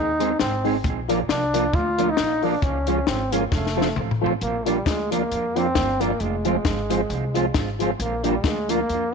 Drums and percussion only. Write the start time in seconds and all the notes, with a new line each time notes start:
0.20 closed hi-hat
0.39 snare
0.65 open hi-hat
0.84 kick, hi-hat pedal
1.09 closed hi-hat
1.29 snare
1.54 closed hi-hat
1.73 kick
1.99 closed hi-hat
2.17 snare
2.43 open hi-hat
2.62 kick, hi-hat pedal
2.87 closed hi-hat
3.07 snare
3.33 closed hi-hat
3.52 kick, snare
3.67 snare
3.82 snare
3.96 mid tom
4.11 floor tom
4.26 floor tom
4.41 closed hi-hat
4.66 closed hi-hat
4.86 kick, snare, closed hi-hat
5.12 closed hi-hat
5.32 closed hi-hat
5.56 closed hi-hat
5.75 kick, snare, closed hi-hat
6.01 closed hi-hat
6.20 closed hi-hat
6.45 closed hi-hat
6.65 kick, snare, closed hi-hat
6.90 closed hi-hat
7.10 closed hi-hat
7.35 closed hi-hat
7.54 kick, snare, closed hi-hat
7.80 closed hi-hat
8.00 closed hi-hat
8.24 closed hi-hat
8.44 kick, snare, closed hi-hat
8.69 closed hi-hat
8.89 closed hi-hat